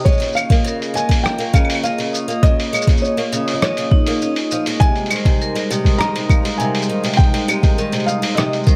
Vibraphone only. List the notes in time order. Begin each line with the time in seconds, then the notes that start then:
0.06 D#5
0.36 F5
0.66 A#4
0.95 D#5
1.25 A#5
1.54 D#5
1.84 D#5
2.13 D#6
2.43 D#5
2.73 C#5
3.02 D#5
3.32 D#6
3.62 D#5
3.91 D#4
4.22 D#5
4.51 D#5
4.82 D#5
5.11 C5
5.42 A#4
5.72 D#6
6.01 D#5
6.31 F5
6.60 A#4
6.90 D#5
7.20 A#5
7.49 D#5
7.79 D#5
8.09 D#6
8.38 D#5
8.67 C5